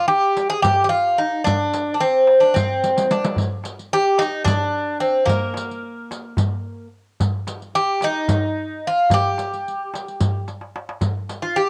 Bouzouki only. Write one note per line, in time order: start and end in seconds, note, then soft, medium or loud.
0.08 0.49 G4 loud
0.50 0.62 G#4 medium
0.62 0.83 G4 loud
0.84 0.89 G4 medium
0.89 1.19 F4 medium
1.18 1.44 D#4 medium
1.44 1.93 D4 medium
1.94 2.01 D4 soft
2.00 2.43 C4 medium
2.40 2.55 D4 medium
2.54 3.11 C4 medium
3.11 3.36 D4 medium
3.93 4.21 G4 loud
4.19 4.44 D#4 medium
4.44 5.00 D4 medium
5.00 5.29 C4 medium
5.26 6.87 A#3 medium
7.75 8.03 G4 medium
8.04 8.87 D#4 medium
8.87 9.13 F4 medium
9.14 10.45 G4 medium
11.42 11.57 F4 medium
11.56 11.69 G4 medium